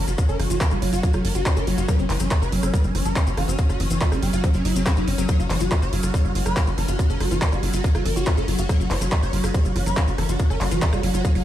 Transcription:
Already playing: C#4
0.08 F#1 F#4, closed hi-hat, maracas
0.18 F#4, kick, closed hi-hat, maracas
0.29 F#1 C#4 A#4, maracas
0.40 F#1 E3 F#4, cross-stick, open hi-hat
0.50 F#1 E3 F#4, closed hi-hat, maracas
0.61 C#4 A#4, kick, clap, closed hi-hat, maracas
0.71 F#1 G3 F#4, cross-stick, maracas
0.82 F#1 F#3 F#4, open hi-hat
0.93 F#1 F#3 F#4, closed hi-hat, maracas
1.03 F#3 F#4, kick, closed hi-hat, maracas
1.13 F#1 F#3 F#4, cross-stick, maracas
1.25 F#1 E3 A#4, open hi-hat
1.35 F#1 F#4, closed hi-hat, maracas
1.46 C#4 F#4, kick, cross-stick, clap, closed hi-hat, maracas
1.57 F#1 C#4 A#4, maracas
1.67 F#1 F#3 F#4, open hi-hat
1.78 F#1 F#4, closed hi-hat, maracas
1.88 F#3 B4, kick, cross-stick, closed hi-hat, maracas
1.99 F#1 F#3 C#4, maracas
2.10 F#1 E3 B4, clap, open hi-hat
2.20 F#1 F#3 C#4, cross-stick, closed hi-hat, maracas
2.31 F#4, kick, clap, closed hi-hat, maracas
2.42 F#1 F#4 B4, maracas
2.52 F#1 F#3 C#4, open hi-hat
2.63 F#1 F#3 C#4, cross-stick, maracas
2.74 G3 B4, kick, closed hi-hat, maracas
2.84 F#1 F#3 C#4, maracas
2.95 F#1 E3 C#4, cross-stick, open hi-hat
3.05 F#1 F#3 A#4, closed hi-hat, maracas
3.16 C#4, kick, clap, closed hi-hat, maracas
3.27 F#1 C#4 F#4, maracas
3.37 F#1 E3 F#4, cross-stick, open hi-hat
3.48 F#1 C#4 F#4, closed hi-hat, maracas
3.58 C#4 F#4, kick, closed hi-hat, maracas
3.69 F#1 C#4 F#4, cross-stick, maracas
3.80 F#1 E3 C#4, open hi-hat
3.90 F#1 E3 C#4, closed hi-hat, maracas
4.01 C#4 F#4, kick, clap, closed hi-hat, maracas
4.12 F#1 G3 C#4, cross-stick, maracas
4.22 F#1 F#3 C#4, open hi-hat
4.33 F#1 F#3 F#4, closed hi-hat, maracas
4.44 F#3 C#4, kick, cross-stick, closed hi-hat, maracas
4.54 F#1 F#3 C#4, maracas
4.65 F#1 F#3 E4, open hi-hat
4.76 F#1 F#3 C#4, closed hi-hat, maracas
4.86 C#4 F#4, kick, cross-stick, clap, closed hi-hat, maracas
4.97 F#1 F#3 E4, maracas
5.08 F#1 C#4, open hi-hat
5.18 F#1 F#3 C#4, cross-stick, closed hi-hat, maracas
5.29 F#3 C#5, kick, cross-stick, closed hi-hat, maracas
5.39 F#1 F#3 F#4, maracas
5.50 F#1 E3 C#5, clap, open hi-hat
5.60 F#1 F#3 F#4, closed hi-hat, maracas
5.71 F#4, kick, cross-stick, clap, closed hi-hat, maracas
5.82 F#1 F#4 C#5, maracas
5.93 F#1 F#3 F#4, open hi-hat
6.03 F#1 F#3 F#4, cross-stick, closed hi-hat, maracas
6.14 G3 C#5, kick, closed hi-hat, maracas
6.25 F#1 F#3 F#4, maracas
6.35 F#1 E3 F#4, open hi-hat
6.46 F#1 F#3 B4, cross-stick, closed hi-hat, maracas
6.57 C#4 F#4, kick, clap, closed hi-hat, maracas
6.67 F#1 F#4, maracas
6.78 F#1 E3 A#4, cross-stick, open hi-hat
6.88 F#1 F#4, closed hi-hat, maracas
6.99 F#4, kick, closed hi-hat, maracas
7.10 F#1 C#4 A#4, maracas
7.20 F#1 F#3 F#4, cross-stick, open hi-hat
7.31 F#1 E3 F#4, closed hi-hat, maracas
7.42 C#4 A#4, kick, clap, closed hi-hat, maracas
7.52 F#1 G3 F#4, cross-stick, maracas
7.63 F#1 F#3 F#4, open hi-hat
7.73 F#1 F#3 F#4, closed hi-hat, maracas
7.84 F#3 F#4, kick, closed hi-hat, maracas
7.95 F#1 F#3 F#4, cross-stick, maracas
8.05 F#1 E3 A#4, open hi-hat
8.16 F#1 F#4, closed hi-hat, maracas
8.26 C#4 F#4, kick, cross-stick, clap, closed hi-hat, maracas
8.37 F#1 C#4 A#4, maracas
8.48 F#1 F#3 F#4, open hi-hat
8.58 F#1 F#4, closed hi-hat, maracas
8.69 F#3 C#5, kick, cross-stick, closed hi-hat, maracas
8.80 F#1 F#3 F#4, maracas
8.91 F#1 E3 C#5, clap, open hi-hat
9.01 F#1 F#3 F#4, cross-stick, closed hi-hat, maracas
9.12 F#4, kick, clap, closed hi-hat, maracas
9.23 F#1 F#4 C#5, maracas
9.33 F#1 F#3 F#4, open hi-hat
9.44 F#1 F#3 F#4, cross-stick, closed hi-hat, maracas
9.54 G3 C#5, kick, closed hi-hat, maracas
9.65 F#1 F#3 F#4, maracas
9.76 F#1 E3 F#4, cross-stick, open hi-hat
9.86 F#1 F#3 B4, closed hi-hat, maracas
9.97 C#4 F#4, kick, clap, closed hi-hat, maracas
10.08 F#1 F#4, maracas
10.18 F#1 E3 A#4, cross-stick, open hi-hat
10.29 F#1 F#4, closed hi-hat, maracas
10.39 F#4, kick, closed hi-hat, maracas
10.50 F#1 C#4 A#4, cross-stick, maracas
10.61 F#1 F#3 F#4, clap, open hi-hat
10.71 F#1 E3 F#4, closed hi-hat, maracas
10.82 C#4 A#4, kick, clap, closed hi-hat, maracas
10.93 F#1 G3 F#4, cross-stick, maracas
11.03 F#1 F#3 F#4, open hi-hat
11.14 F#1 F#3 F#4, closed hi-hat, maracas
11.25 F#3 F#4, kick, cross-stick, closed hi-hat, maracas
11.35 F#1 F#3 F#4, open hi-hat, maracas

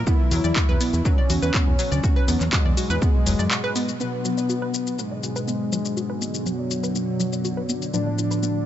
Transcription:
Already playing: B2 F#3
0.07 B3 E4, kick, shaker
0.31 E2 F#3, open hi-hat, shaker
0.44 E2 D5, shaker
0.56 F#4, kick, clap, shaker
0.69 E2 B4
0.81 B3, open hi-hat, shaker
0.93 E2, shaker
1.05 F#3 C#4, kick, shaker
1.18 D5
1.30 E2 F#4, open hi-hat, shaker
1.43 E2 B4, shaker
1.54 B3, kick, clap, shaker
1.67 E2
1.79 F#3, open hi-hat, shaker
1.92 D2 D5, shaker
2.04 F#4, kick, shaker
2.16 B4
2.28 E2 B3, open hi-hat, shaker
2.41 E2, clap, shaker
2.53 F#3 G#3, kick, clap, shaker
2.65 E2 D5
2.77 F#4, open hi-hat, shaker
2.90 E2 B4, shaker
3.02 B3, kick, shaker
3.26 E1 F#3, open hi-hat, shaker
3.39 F#2 D5, shaker
3.51 F#4, clap, shaker
3.64 B4
3.76 B3, open hi-hat, shaker
3.88 shaker
4.00 B2 D3 F#3 B3 D4 F#4 D5, shaker
4.25 F#3, shaker
4.38 D5, shaker
4.49 F#4, shaker
4.62 B4
4.74 B3, shaker
4.87 shaker
4.99 F#3 G#3, shaker
5.11 D5
5.23 F#4, shaker
5.36 B4, shaker
5.48 B3, shaker
5.72 F#3, shaker
5.85 D5, shaker
5.97 F#4, shaker
6.10 B4
6.22 B3, shaker
6.34 shaker
6.46 F#3, shaker
6.59 D5
6.71 F#4, shaker
6.83 B4, shaker
6.95 B3, shaker
7.20 F#3, shaker
7.33 D5, shaker
7.45 F#4, shaker
7.57 B4
7.69 B3, shaker
7.82 shaker
7.94 A2 F3 A3 D4 F4, shaker
8.06 D5
8.18 F4, shaker
8.31 B4, shaker
8.43 B3, shaker

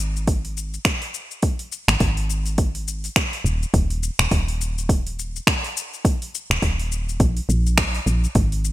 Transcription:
Already playing: G#1
0.16 shaker
0.27 kick, open hi-hat, shaker
0.45 open hi-hat
0.57 shaker
0.74 shaker
0.85 finger snap, kick, open hi-hat, shaker
1.02 open hi-hat
1.14 shaker
1.31 shaker
1.43 kick, open hi-hat, shaker
1.59 open hi-hat
1.72 shaker
1.88 G#1, finger snap, open hi-hat, shaker
2.00 G#1, kick, open hi-hat, shaker
2.17 open hi-hat
2.30 shaker
2.46 open hi-hat, shaker
2.58 kick, open hi-hat, shaker
2.75 open hi-hat
2.88 shaker
3.04 open hi-hat, shaker
3.16 finger snap, kick, open hi-hat, shaker
3.33 open hi-hat
3.44 D#1, shaker
3.63 shaker
3.74 D#1, kick, open hi-hat, shaker
3.90 open hi-hat
4.03 shaker
4.19 D#1, finger snap, shaker
4.31 D#1, kick, open hi-hat, shaker
4.48 open hi-hat
4.61 shaker
4.78 shaker
4.89 kick, open hi-hat, shaker
5.07 open hi-hat
5.19 shaker
5.36 shaker
5.47 finger snap, kick, open hi-hat, shaker
5.64 open hi-hat
5.77 shaker
5.94 shaker
6.05 kick, open hi-hat, shaker
6.22 open hi-hat
6.35 shaker
6.50 D#1, finger snap, shaker
6.62 D#1, kick, open hi-hat, shaker
6.79 open hi-hat
6.92 shaker
7.09 shaker
7.20 A#1, kick, open hi-hat, shaker
7.37 open hi-hat
7.49 A#1, shaker
7.67 shaker
7.78 finger snap, kick, open hi-hat, shaker
7.95 open hi-hat
8.06 A#1, shaker
8.24 shaker
8.35 G#1, kick, open hi-hat, shaker
8.52 open hi-hat
8.65 shaker

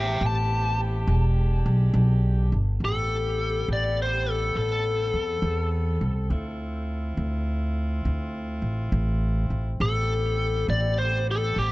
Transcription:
Already playing: A1 B3 C4 G4
0.00 E5 G5
0.21 A1
0.26 A5
1.07 E1 G#3 D4
1.66 B1
1.94 B1
2.52 G1
2.80 A1 B3 C4 G4
2.85 A4
3.68 A1
3.73 D5
4.02 C5
4.30 A4
4.55 A1 A4
5.13 E2
5.42 E2
6.01 C2
6.30 D2 E4 F4
7.17 D2
8.05 D2
8.62 A1
8.92 A1
9.50 A1
9.80 A1 B3 G4 A4
10.68 A1 D5
10.98 C5
11.31 A4
11.56 A1 G4

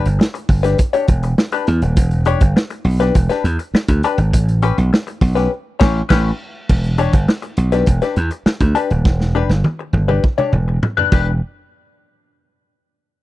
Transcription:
0.05 G1, closed hi-hat
0.19 muted hollow-body jazz guitar stroke, snare
0.34 muted hollow-body jazz guitar stroke, closed hi-hat
0.49 G1, kick, open hi-hat
0.63 D4 G4 B4, snare, closed hi-hat
0.78 muted hollow-body jazz guitar stroke, kick, closed hi-hat
0.93 D4 G4 C#5, closed hi-hat
1.07 E1, muted hollow-body jazz guitar stroke, kick, closed hi-hat
1.23 muted hollow-body jazz guitar stroke, closed hi-hat
1.38 muted hollow-body jazz guitar stroke, snare
1.52 D4 G4 B4, closed hi-hat
1.67 E2, muted hollow-body jazz guitar stroke, closed hi-hat
1.82 D#1, muted hollow-body jazz guitar stroke, closed hi-hat
1.97 E1, kick, closed hi-hat
2.11 closed hi-hat
2.25 D4 G4 C#5, closed hi-hat
2.40 G1, kick, closed hi-hat
2.56 muted hollow-body jazz guitar stroke, snare
2.70 muted hollow-body jazz guitar stroke, closed hi-hat
2.85 B1, open hi-hat
3.00 D4 G4 B4, snare, closed hi-hat
3.15 E1, muted hollow-body jazz guitar stroke, kick, closed hi-hat
3.29 D4 G4 B4, snare, closed hi-hat
3.44 E2, muted hollow-body jazz guitar stroke, closed hi-hat
3.59 muted hollow-body jazz guitar stroke, closed hi-hat
3.74 muted slap bass stroke, muted hollow-body jazz guitar stroke, snare
3.88 D2, muted hollow-body jazz guitar stroke, kick, closed hi-hat
4.03 D4 G4 B4, closed hi-hat
4.18 G#1, muted hollow-body jazz guitar stroke, closed hi-hat
4.33 A1, kick, closed hi-hat
4.48 closed hi-hat
4.62 C#4 G4 B4, closed hi-hat
4.78 B1, closed hi-hat
4.93 muted hollow-body jazz guitar stroke, snare
5.07 muted hollow-body jazz guitar stroke, closed hi-hat
5.21 B1, kick, open hi-hat
5.35 C#4 G4 B4, snare, closed hi-hat
5.80 A1 C#4 G4 C#5, kick, snare, crash
6.09 A1 C#4 G4 B4, kick, snare, crash
6.69 E1, kick, crash
6.84 closed hi-hat
6.98 D4 G4 C#5, closed hi-hat
7.13 G1, kick, closed hi-hat
7.28 muted hollow-body jazz guitar stroke, snare
7.42 muted hollow-body jazz guitar stroke, closed hi-hat
7.57 B1, closed hi-hat
7.72 D4 G4 B4, snare, closed hi-hat
7.86 E1, muted hollow-body jazz guitar stroke, kick, closed hi-hat
8.02 D4 G4 B4, snare, closed hi-hat
8.16 E2, muted hollow-body jazz guitar stroke, closed hi-hat
8.31 muted hollow-body jazz guitar stroke, closed hi-hat
8.46 muted slap bass stroke, muted hollow-body jazz guitar stroke, snare
8.60 D2, muted hollow-body jazz guitar stroke, kick, closed hi-hat
8.75 D4 G4 B4, closed hi-hat
8.90 D#1, muted hollow-body jazz guitar stroke, closed hi-hat
9.05 E1, kick, snare
9.21 snare
9.35 D4 G4 B4
9.49 G1, snare
9.64 muted hollow-body jazz guitar stroke, high tom
9.79 muted hollow-body jazz guitar stroke
9.93 G1, high tom
10.08 D4 G4 B4, mid tom
10.24 muted hollow-body jazz guitar stroke, kick
10.38 D4 G4 C#5, mid tom
10.53 E1, muted hollow-body jazz guitar stroke, mid tom
10.68 muted hollow-body jazz guitar stroke
10.83 muted hollow-body jazz guitar stroke, mid tom
10.97 D4 G4 B4, floor tom
11.12 E1 D4 G4 B4, kick, crash

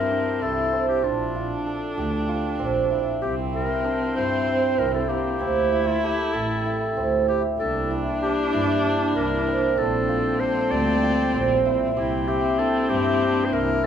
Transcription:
Already playing: C4 D4 E4 G4 A#4
0.11 D4
0.42 C2 E4 A4
0.73 C4
0.88 G4
1.03 A#1 D4 F4
1.35 F4
1.66 A4
1.97 D2 G4
2.29 F4
2.59 A#1 C4
2.90 E4
3.21 C2 C4 G4
3.53 E4 A#4
3.84 D4
4.16 G2 E4 C5
4.47 C4
4.78 C2 E4 A#4
4.94 A4
5.09 A#3 G4
5.39 D2 C4 E4
5.72 E4
5.86 F4
6.03 G4 A4
6.33 A1 G4 A4
6.66 E4
6.97 D2 C4
7.28 E4 G4
7.58 C2 C3 A#3 D4 E4 G4 A4
7.91 E4
8.22 D4 G4
8.53 G2 E4
8.84 D4
9.15 C2 E4 A#4
9.47 C4
9.77 A#1 F3 G3 A#3 C4 D4 A4
10.09 F4
10.40 A4 C5
10.71 D2 G4 D5
11.03 F4
11.33 A#1 C4
11.65 E4
11.95 C2 C3 A#3 C4 E4 G4
12.27 E4 G4
12.59 D4 A4
12.89 G2 E4 G4
13.21 D4
13.45 C5
13.52 C2 E4 A#4
13.83 C4

